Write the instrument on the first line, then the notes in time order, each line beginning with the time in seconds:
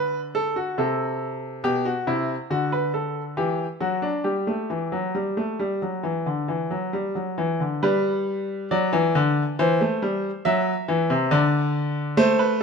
grand piano
Already playing: D3 B4
0.35 A4
0.56 F#4
0.78 C3 A4
1.64 B2 G4
1.85 F#4
2.07 C3 E4
2.50 D3 F#4
2.72 B4
2.94 A4
3.37 E3 G4
3.80 F#3 F#4
4.02 D4
4.24 G3 G4
4.47 A3
4.70 E3
4.92 F#3
5.15 G3
5.37 A3
5.59 G3
5.82 F#3
6.03 E3
6.26 D3
6.48 E3
6.71 F#3
6.93 G3
7.15 F#3
7.38 E3
7.60 D3
7.83 G3 B4
8.71 F#3 D5
8.93 E3
9.15 D3
9.59 E3 C5
9.81 A3
10.02 G3
10.45 F#3 E5
10.88 E3
11.10 C3
11.31 D3 D5
12.17 A3 C5
12.39 B4